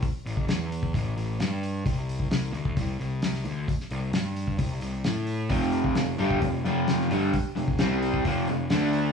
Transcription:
<<
  \new Staff \with { instrumentName = "Overdriven electric guitar" } { \clef bass \time 4/4 \key f \lydian \tempo 4 = 131 r1 | r1 | r1 | <f, c f>4 <f, c>8 <g, d g>8 <f, c>8 <f, c f>4 <g, d g>8 |
r8 <f, c>8 <c g c'>4 <f, c f>8 <f, c>8 <d a d'>4 | }
  \new Staff \with { instrumentName = "Picked electric bass" } { \clef bass \time 4/4 \key f \lydian r8 a,,8 e,4 a,,8 a,,8 g,4 | c,4 c,8 d,8 c,8 c,4 d,8 | r8 c,8 g,4 c,8 c,8 a,4 | f,,4 f,,8 g,,8 f,,8 f,,4 g,,8 |
r8 f,,8 c,4 f,,8 f,,8 d,4 | }
  \new DrumStaff \with { instrumentName = "Drums" } \drummode { \time 4/4 <hho bd>8 hho16 bd16 <hho sn>8 hho16 bd16 <hho bd>8 hho8 <hho sn>8 hho8 | <hho bd>8 hho16 bd16 <hho sn>8 hho16 bd16 <hho bd>8 hho8 <hho sn>16 sn16 hho8 | <hho bd>16 sn16 hho8 <hho sn>8 hho16 bd16 <hho bd>8 hho8 <hho sn>8 hho8 | <hho bd>16 sn16 hho16 bd16 <hho sn>8 hho16 bd16 <hho bd>8 hho8 <hho sn>16 sn16 hho8 |
<hho bd>8 hho16 bd16 <hho sn>8 hho16 bd16 <hho bd>8 hho8 <hho sn>8 hho8 | }
>>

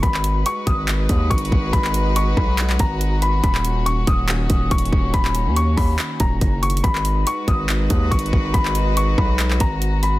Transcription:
<<
  \new Staff \with { instrumentName = "Felt piano" } { \time 4/4 \key gis \minor \tempo 4 = 141 b''4 cis'''8 dis'''4. cis'''4 | b''4 cis'''8 b''4 ais''4 b''8 | b''4 cis'''8 dis'''4. cis'''4 | b''4 cis'''8 b''4 ais''4 cis'''8 |
b''4 cis'''8 dis'''4. cis'''4 | b''4 cis'''8 b''4 ais''4 b''8 | }
  \new Staff \with { instrumentName = "String section" } { \time 4/4 \key gis \minor <gis dis' fis' b'>1~ | <gis dis' fis' b'>1 | <dis ais cis'>1~ | <dis ais cis'>1 |
<gis dis' fis' b'>1~ | <gis dis' fis' b'>1 | }
  \new Staff \with { instrumentName = "808-style bass" } { \clef bass \time 4/4 \key gis \minor gis,,4 r8 gis,,4 dis,8 gis,,8 gis,,8 | gis,,4. b,,4 gis,,4. | dis,,4. dis,,4 dis,,8 dis,,8 dis,,8 | dis,,8. dis,8. dis,8 r8 dis,,8 fis,,4 |
gis,,4 r8 gis,,4 dis,8 gis,,8 gis,,8 | gis,,4. b,,4 gis,,4. | }
  \new DrumStaff \with { instrumentName = "Drums" } \drummode { \time 4/4 <hh bd>16 hc16 hh8 hh8 <hh bd>8 <hc hh>8 <hh bd>8 \tuplet 3/2 { <hh bd>16 hh16 hh16 bd16 r16 r16 } | <hh bd>16 hc16 hh8 hh8 bd8 <hc hh>16 hc16 <hh bd>8 hh8 hh8 | <hh bd>16 hc16 hh8 hh8 <hh bd>8 <hc hh>8 <hh bd>8 \tuplet 3/2 { <hh bd>16 hh16 hh16 bd16 r16 r16 } | <hh bd>16 hc16 hh8 hh8 <hho bd>8 <hc hh>8 <hh bd>8 \tuplet 3/2 { <hh bd>16 r16 r16 hh16 hh16 hh16 } |
<hh bd>16 hc16 hh8 hh8 <hh bd>8 <hc hh>8 <hh bd>8 \tuplet 3/2 { <hh bd>16 hh16 hh16 bd16 r16 r16 } | <hh bd>16 hc16 hh8 hh8 bd8 <hc hh>16 hc16 <hh bd>8 hh8 hh8 | }
>>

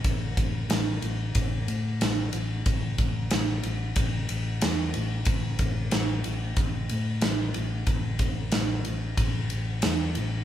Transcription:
<<
  \new Staff \with { instrumentName = "Fingered electric bass" } { \clef bass \time 4/4 \key c \lydian \tempo 4 = 92 a,,8 a,,8 a,,8 a,,8 a,,8 a,8 a,,8 a,,8 | a,,8 a,,8 a,,8 a,,8 a,,8 a,,8 e,8 a,,8 | a,,8 a,,8 a,,8 a,,8 a,,8 a,8 a,,8 a,,8 | a,,8 a,,8 a,,8 a,,8 a,,8 a,,8 e,8 a,,8 | }
  \new DrumStaff \with { instrumentName = "Drums" } \drummode { \time 4/4 <bd cymr>8 <bd cymr>8 <cymr sn>8 cymr8 <bd cymr>8 cymr8 <cymr sn>8 cymr8 | <bd cymr>8 <bd cymr>8 <cymr sn>8 cymr8 <bd cymr>8 cymr8 <cymr sn>8 cymr8 | <bd cymr>8 <bd cymr>8 <cymr sn>8 cymr8 <bd cymr>8 cymr8 <cymr sn>8 cymr8 | <bd cymr>8 <bd cymr>8 <cymr sn>8 cymr8 <bd cymr>8 cymr8 <cymr sn>8 cymr8 | }
>>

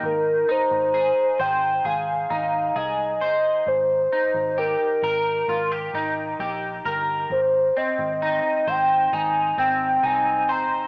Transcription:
<<
  \new Staff \with { instrumentName = "Soft synth lead" } { \time 4/4 \key aes \major \tempo 4 = 66 bes'8 c''4 g''8 f''4 ees''4 | c''4 bes'2 r4 | c''8 ees''4 g''8 aes''8 g''8 aes''8 bes''8 | }
  \new Staff \with { instrumentName = "Clean electric guitar" } { \time 4/4 \key aes \major r8 ees'8 aes'8 c''8 aes'8 ees'8 aes'8 c''8 | r8 ees'8 g'8 bes'8 f'16 g'16 ees'8 g'8 bes'8 | r8 c'8 ees'8 c''8 ees'8 c'8 ees'8 c''8 | }
  \new Staff \with { instrumentName = "Picked electric bass" } { \clef bass \time 4/4 \key aes \major aes,,8 r16 aes,,8 r16 aes,,8 aes,,8 aes,,8 c,8 g,,8 | aes,,8 r16 aes,,8 r16 aes,,8 aes,,8 aes,,8 bes,,8 g,,8 | aes,,8 r16 aes,,8 r16 aes,,8 aes,,8 aes,,8 c,8 g,,8 | }
>>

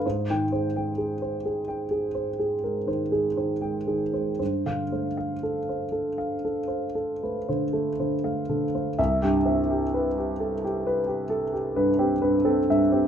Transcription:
<<
  \new Staff \with { instrumentName = "Grand piano" } { \time 9/8 \key g \major \tempo 4. = 42 << { r16 g''8 r2. r8. | r16 f''8 r2. r8. | e''8 r1 | } \\ { c''8 c''16 g''16 aes'16 c''16 aes'16 g''16 aes'16 c''16 aes'16 bes'16 c''16 aes'16 c''16 g''16 aes'16 c''16 | c''8 c''16 f''16 a'16 c''16 a'16 f''16 a'16 c''16 a'16 b'16 c''16 a'16 c''16 f''16 a'16 c''16 | r16 g'16 e''16 g'16 b'16 g'16 a'16 g'16 b'16 g'16 a'16 g'16 b'16 g'16 b'16 a'16 e''16 g'16 | } >> }
  \new Staff \with { instrumentName = "Grand piano" } { \clef bass \time 9/8 \key g \major aes,16 ees16 aes8 r4. r16 aes16 ees16 aes16 ees16 aes16 ees16 aes16 | g,16 d16 a8 r4. r16 a16 d16 a16 d16 a16 d16 a16 | c,16 g,16 c'8 r2 g,16 c'16 g,16 c'16 g,16 c'16 | }
>>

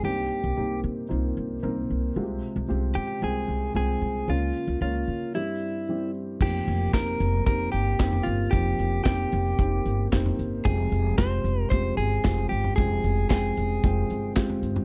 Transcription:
<<
  \new Staff \with { instrumentName = "Clean electric guitar" } { \time 4/4 \key f \minor \tempo 4 = 113 g'4. r2 r8 | r4. g'8 aes'4 aes'4 | f'4 f'4 e'4. r8 | g'4 bes'4 bes'8 g'4 f'8 |
g'4 g'2 r4 | aes'4 c''4 c''8 aes'4 g'8 | aes'4 aes'2 r4 | }
  \new Staff \with { instrumentName = "Upright piano" } { \time 4/4 \key f \minor <bes c' ees' g'>4 <bes c' ees' g'>4 <bes c' ees' f'>4 <bes c' ees' bes'>4 | <aes c' f' ges' g'>4 <aes c' f' g'>4 <aes c' f' g''>4 <aes c' f' g''>4 | <bes des' f' bes'>4 <bes des' f' bes'>4 <g c' e' g'>4 <g c' e' g'>4 | <bes c' ees' g'>4 <bes c' ees' g'>4 <bes c' ees' g'>4 <bes c' ees' g'>4 |
<bes c' ees' f'>4 <bes c' ees' g'>4 <bes c' ees' g'>4 <bes c' ees' g'>4 | <aes c' f' g''>4 <aes c' f' g'>4 <aes c' f' g'>4 <aes c' f' g'>4 | <aes c' f' g''>4 <aes c' f' g''>4 <aes c' f' g''>4 <aes c' f' g'>4 | }
  \new Staff \with { instrumentName = "Upright piano" } { \clef bass \time 4/4 \key f \minor g,4. r2 r8 | c4. r2 r8 | des4. r8 g,4. r8 | f4. r2 r8 |
f4. r2 r8 | c4. r2 r8 | c4. r2 r8 | }
  \new Staff \with { instrumentName = "Upright bass" } { \clef bass \time 4/4 \key f \minor c,8 r16 c,16 c,8 c8 c,8 c,8 c,8 c,8 | c,8 r16 c,16 c,8 c8 c,8 c,8 c,8 c,8 | des,8 r16 des,16 des,8 des8 r2 | f,,8 f,,8 f,,8 f,,8 f,,8 g,,8 f,,8 g,,8 |
f,,8 f,,8 f,,8 f,,8 f,,8 g,,8 f,,8 g,,8 | f,,8 f,,8 f,,8 f,,8 f,,8 g,,8 f,,8 g,,8 | f,,8 f,,8 f,,8 f,,8 f,,8 g,,8 f,,8 g,,8 | }
  \new DrumStaff \with { instrumentName = "Drums" } \drummode { \time 4/4 r4 r4 r4 r4 | r4 r4 r4 r4 | r4 r4 r4 r4 | <cymc bd>8 hh8 <hc hh bd sn>8 hh8 <hh bd>8 hh8 <hc hh bd sn>16 tomfh16 hh8 |
<hh bd>8 hh8 <hc hh bd sn>8 hh8 <hh bd>8 hh8 <hc hh bd sn>16 tomfh16 hh8 | <hh bd>8 hh8 <hc hh bd sn>8 hh8 <hh bd>8 hh8 <hc hh bd sn>16 tomfh16 hh16 tomfh16 | <hh bd>8 hh8 <hc hh bd sn>8 hh8 <hh bd>8 hh8 <hc hh bd sn>16 tomfh16 hh16 tomfh16 | }
>>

